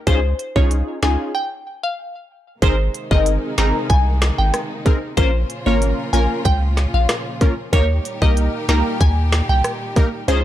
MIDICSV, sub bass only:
0, 0, Header, 1, 2, 480
1, 0, Start_track
1, 0, Tempo, 638298
1, 52, Time_signature, 4, 2, 24, 8
1, 7854, End_track
2, 0, Start_track
2, 0, Title_t, "Sub bass"
2, 0, Program_c, 0, 38
2, 53, Note_on_c, 0, 37, 110
2, 255, Note_off_c, 0, 37, 0
2, 420, Note_on_c, 0, 36, 88
2, 622, Note_off_c, 0, 36, 0
2, 773, Note_on_c, 0, 37, 94
2, 880, Note_off_c, 0, 37, 0
2, 1972, Note_on_c, 0, 32, 106
2, 2174, Note_off_c, 0, 32, 0
2, 2339, Note_on_c, 0, 31, 94
2, 2542, Note_off_c, 0, 31, 0
2, 2692, Note_on_c, 0, 32, 93
2, 2799, Note_off_c, 0, 32, 0
2, 2932, Note_on_c, 0, 36, 102
2, 3242, Note_off_c, 0, 36, 0
2, 3300, Note_on_c, 0, 32, 94
2, 3395, Note_off_c, 0, 32, 0
2, 3892, Note_on_c, 0, 34, 115
2, 4094, Note_off_c, 0, 34, 0
2, 4259, Note_on_c, 0, 32, 103
2, 4462, Note_off_c, 0, 32, 0
2, 4611, Note_on_c, 0, 34, 97
2, 4719, Note_off_c, 0, 34, 0
2, 4853, Note_on_c, 0, 37, 93
2, 5162, Note_off_c, 0, 37, 0
2, 5218, Note_on_c, 0, 34, 99
2, 5314, Note_off_c, 0, 34, 0
2, 5812, Note_on_c, 0, 39, 115
2, 6015, Note_off_c, 0, 39, 0
2, 6180, Note_on_c, 0, 36, 102
2, 6382, Note_off_c, 0, 36, 0
2, 6532, Note_on_c, 0, 37, 99
2, 6639, Note_off_c, 0, 37, 0
2, 6772, Note_on_c, 0, 39, 99
2, 7082, Note_off_c, 0, 39, 0
2, 7139, Note_on_c, 0, 36, 89
2, 7234, Note_off_c, 0, 36, 0
2, 7732, Note_on_c, 0, 37, 102
2, 7854, Note_off_c, 0, 37, 0
2, 7854, End_track
0, 0, End_of_file